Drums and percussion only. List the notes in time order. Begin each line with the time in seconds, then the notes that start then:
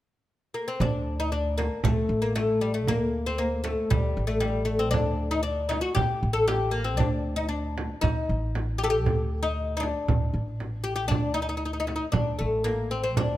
0.81 frame drum
1.59 frame drum
1.84 frame drum
2.36 frame drum
2.87 frame drum
3.65 frame drum
3.91 frame drum
4.42 frame drum
4.94 frame drum
5.71 frame drum
5.96 frame drum
6.48 frame drum
7.00 frame drum
7.78 frame drum
8.04 frame drum
8.55 frame drum
9.06 frame drum
9.83 frame drum
10.08 frame drum
10.60 frame drum
11.11 frame drum
11.88 frame drum
12.13 frame drum
12.66 frame drum
13.17 frame drum